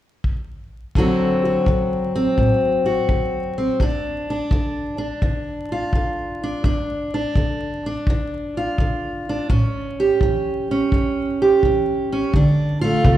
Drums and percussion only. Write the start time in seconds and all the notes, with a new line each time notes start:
0.24 kick
0.95 kick
1.66 kick
2.38 kick
3.09 kick
3.80 kick
4.51 kick
5.22 kick
5.93 kick
6.64 kick
7.35 kick
8.07 kick
8.78 kick
9.50 kick
10.21 kick
10.92 kick
11.63 kick
12.34 kick
13.05 kick